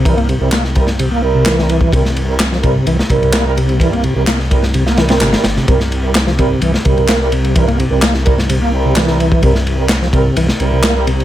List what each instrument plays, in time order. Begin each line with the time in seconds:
Already playing: detuned saw bass C2
0.05 tonewheel organ E3, brass ensemble G3 C4 E4 A#4, kick, ride
0.17 tonewheel organ A#3, ride
0.29 tonewheel organ C3, ride
0.41 detuned saw bass C2, tonewheel organ C3, brass ensemble G3 C4 E4 A#4
0.52 tonewheel organ A#3, snare, clap, ride
0.64 snare
0.75 brass ensemble G3 C4 E4 A#4, kick, ride
0.87 snare
0.99 tonewheel organ C3, ride
1.11 tonewheel organ A#3
1.23 brass ensemble G3 C4 E4 A#4
1.35 tonewheel organ C3
1.46 tonewheel organ E3, snare, clap, ride
1.58 brass ensemble G3 C4 E4 A#4, snare
1.69 ride
1.81 kick
1.92 detuned saw bass C2, tonewheel organ C3, brass ensemble G3 C4 E4 A#4, kick, ride
2.05 snare
2.16 ride
2.28 brass ensemble G3 C4 E4 A#4
2.39 snare, clap, ride
2.52 tonewheel organ F3, snare
2.63 tonewheel organ C3, brass ensemble G3 C4 E4 A#4, kick, ride
2.87 detuned saw bass C2, tonewheel organ E3, ride
2.99 snare
3.10 detuned saw bass C2, tonewheel organ C3, brass ensemble G3 C4 E4 A#4, kick, ride
3.22 tonewheel organ C3, ride
3.33 tonewheel organ A#3, snare, clap, ride
3.46 brass ensemble G3 C4 E4 A#4
3.57 tonewheel organ C3, ride
3.69 ride
3.80 tonewheel organ E3, brass ensemble G3 C4 E4 A#4, kick, ride
3.93 tonewheel organ A#3, ride
4.04 tonewheel organ C3, ride
4.16 detuned saw bass C2, tonewheel organ C3, brass ensemble G3 C4 E4 A#4
4.27 tonewheel organ A#3, snare, clap, ride
4.40 snare
4.51 brass ensemble G3 C4 E4 A#4, kick, ride
4.63 snare
4.74 tonewheel organ C3, ride
4.86 tonewheel organ A#3, snare
4.97 tonewheel organ E3, brass ensemble G3 C4 E4 A#4, snare, ride
5.09 tonewheel organ C4, snare, ride
5.21 detuned saw bass G1, tonewheel organ C3, snare, clap, ride
5.33 brass ensemble G3 C4 E4 A#4, snare, ride
5.44 detuned saw bass G1, snare, ride
5.56 tonewheel organ C3, snare
5.68 detuned saw bass C2, tonewheel organ C3, brass ensemble G3 C4 E4 A#4, kick, ride
5.80 snare
5.92 ride
6.03 brass ensemble G3 C4 E4 A#4
6.15 snare, clap, ride
6.27 tonewheel organ F3, snare
6.38 tonewheel organ C3, brass ensemble G3 C4 E4 A#4, kick, ride
6.62 detuned saw bass C2, tonewheel organ E3, ride
6.74 snare
6.85 detuned saw bass C2, tonewheel organ C3, brass ensemble G3 C4 E4 A#4, kick, ride
6.97 tonewheel organ C3, ride
7.08 tonewheel organ A#3, snare, clap, ride
7.21 brass ensemble G3 C4 E4 A#4
7.32 tonewheel organ C3, ride
7.44 ride
7.55 tonewheel organ E3, brass ensemble G3 C4 E4 A#4, kick, ride
7.68 tonewheel organ A#3, ride
7.79 tonewheel organ C3, ride
7.91 detuned saw bass C2, tonewheel organ C3, brass ensemble G3 C4 E4 A#4
8.02 tonewheel organ A#3, snare, clap, ride
8.14 snare
8.26 brass ensemble G3 C4 E4 A#4, kick, ride
8.38 snare
8.49 tonewheel organ C3, ride
8.61 tonewheel organ A#3
8.72 brass ensemble G3 C4 E4 A#4
8.85 tonewheel organ C3
8.96 tonewheel organ E3, snare, clap, ride
9.07 brass ensemble G3 C4 E4 A#4, snare
9.20 ride
9.32 kick
9.43 detuned saw bass C2, tonewheel organ C3, brass ensemble G3 C4 E4 A#4, kick, ride
9.55 snare
9.67 ride
9.78 brass ensemble G3 C4 E4 A#4
9.89 snare, clap, ride
10.02 tonewheel organ F3, snare
10.13 tonewheel organ C3, brass ensemble G3 C4 E4 A#4, kick, ride
10.36 detuned saw bass C2, tonewheel organ E3, ride
10.48 snare
10.60 detuned saw bass C2, tonewheel organ C3, brass ensemble G3 C4 E4 A#4, ride
10.72 tonewheel organ C3
10.83 tonewheel organ A#3, snare, clap, ride
10.95 brass ensemble G3 C4 E4 A#4
11.07 tonewheel organ C3, ride
11.20 ride